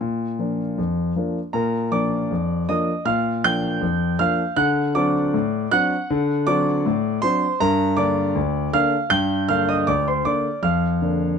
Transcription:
0.00 0.34 A#2 medium
0.00 0.75 F4 soft
0.00 0.78 A#4 medium
0.39 0.60 F3 soft
0.39 0.60 A#3 soft
0.39 0.61 D4 soft
0.78 1.11 F2 medium
1.16 1.37 F3 soft
1.16 1.38 A#3 soft
1.16 1.38 D4 soft
1.53 1.86 A#2 medium
1.53 1.90 A#4 medium
1.53 1.92 A#5 medium
1.92 2.13 F3 soft
1.92 2.14 A#3 soft
1.92 2.14 D4 soft
1.92 2.65 D5 medium
1.92 2.68 D6 medium
2.31 2.63 F2 medium
2.69 2.90 F3 soft
2.69 2.90 A#3 soft
2.69 2.90 D4 soft
2.69 3.04 D#5 medium
2.69 3.07 D#6 medium
3.05 3.38 A#2 medium
3.05 3.42 F5 medium
3.05 3.44 F6 medium
3.44 3.65 F3 soft
3.44 3.66 A#3 soft
3.44 3.66 D4 soft
3.44 4.16 G5 medium
3.44 4.20 G6 medium
3.81 4.14 F2 medium
4.19 4.41 F3 soft
4.19 4.41 A#3 soft
4.19 4.41 D4 soft
4.19 4.56 F5 medium
4.19 4.58 F6 medium
4.56 4.89 D3 medium
4.56 4.93 F#5 medium
4.56 4.95 F#6 loud
4.95 5.16 F#3 soft
4.95 5.17 C4 soft
4.95 5.17 D4 medium
4.95 5.68 D5 medium
4.95 5.71 D6 medium
5.34 5.66 A2 medium
5.71 5.93 F#3 soft
5.71 5.93 C4 soft
5.71 5.93 D4 medium
5.71 6.44 F#5 medium
5.71 6.47 F#6 loud
6.10 6.42 D3 medium
6.47 6.68 F#3 medium
6.47 6.68 C4 soft
6.47 6.69 D4 medium
6.47 7.19 D5 medium
6.47 7.23 D6 medium
6.86 7.18 A2 medium
7.22 7.44 F#3 soft
7.22 7.44 C4 medium
7.22 7.44 D4 medium
7.22 7.59 C5 medium
7.22 7.60 C6 loud
7.60 7.93 G2 medium
7.60 7.96 A#4 medium
7.60 7.98 A#5 loud
7.97 8.18 D3 medium
7.97 8.19 A#3 medium
7.97 8.19 D4 medium
7.97 8.70 D5 medium
7.97 8.73 D6 medium
8.35 8.68 D2 medium
8.73 8.94 D3 soft
8.73 8.94 A#3 soft
8.73 8.95 D4 medium
8.73 9.09 F5 medium
8.73 9.12 F6 loud
9.10 9.43 G2 medium
9.10 9.47 G5 medium
9.10 9.49 G6 medium
9.49 9.70 D3 soft
9.49 9.71 A#3 soft
9.49 9.71 D4 soft
9.49 9.68 F5 medium
9.49 9.68 F6 medium
9.69 9.87 D#5 medium
9.69 9.88 D#6 medium
9.87 10.20 D2 medium
9.87 10.06 D5 medium
9.87 10.07 D6 medium
10.08 10.25 C5 medium
10.08 10.26 C6 medium
10.25 10.46 D3 soft
10.25 10.46 A#3 soft
10.25 10.47 D4 soft
10.25 10.62 D5 medium
10.25 10.64 D6 medium
10.63 10.96 F2 medium
10.63 11.39 F5 medium
10.63 11.39 F6 medium
11.01 11.23 D3 soft
11.01 11.23 A#3 soft
11.01 11.23 D4 soft

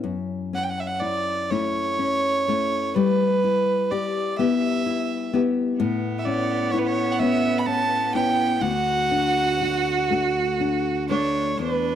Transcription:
0.00 2.95 F#2 medium
0.00 0.14 B3 soft
0.00 0.53 C#4 soft
0.00 1.01 E4 soft
0.53 1.50 C#4 medium
0.53 0.65 F#5 medium
0.63 0.71 G5 medium
0.69 0.82 F#5 medium
0.80 0.88 E5 medium
0.87 1.02 F#5 medium
1.01 1.52 E4 medium
1.01 1.52 D5 medium
1.50 2.47 A3 soft
1.50 1.98 C#4 soft
1.50 2.49 E4 medium
1.50 2.96 C#5 medium
1.99 2.47 C#4 medium
2.48 3.06 A3 soft
2.48 3.06 C#4 soft
2.48 3.44 E4 soft
2.95 5.79 G3 medium
2.95 3.92 B4 medium
3.44 4.39 E4 medium
3.91 4.38 G4 medium
3.91 4.37 D5 medium
4.37 5.33 B3 medium
4.37 4.86 E4 medium
4.37 5.32 G4 medium
4.37 5.39 E5 medium
4.86 5.34 E4 medium
5.33 6.29 B3 medium
5.33 6.26 E4 medium
5.33 5.89 G4 medium
5.77 8.62 A2 medium
5.77 8.63 B3 medium
6.19 6.27 E5 medium
6.26 7.20 C#4 medium
6.26 6.72 D5 medium
6.71 7.20 E4 medium
6.71 6.80 C#5 medium
6.78 6.88 B4 medium
6.86 7.13 C#5 medium
7.12 7.21 F#5 medium
7.19 8.14 B3 medium
7.19 7.66 C#4 medium
7.19 8.14 E4 medium
7.19 7.60 E5 loud
7.58 7.67 B5 medium
7.66 8.13 C#4 medium
7.66 8.13 A5 loud
8.14 8.71 B3 soft
8.14 8.71 C#4 soft
8.14 8.72 E4 medium
8.14 8.63 G5 loud
8.61 11.58 D2 medium
8.61 11.09 F#4 loud
8.61 10.59 F#5 loud
9.11 10.11 D4 medium
9.61 10.10 F#4 medium
10.10 11.09 A3 soft
10.10 10.60 D4 soft
10.10 11.10 F#4 medium
10.60 11.11 D4 medium
11.09 11.69 A3 soft
11.09 11.55 D4 medium
11.09 11.95 D4 soft
11.09 11.69 F#4 soft
11.09 11.59 C#5 medium
11.58 11.95 E2 medium
11.58 11.95 D4 medium
11.58 11.95 B4 medium

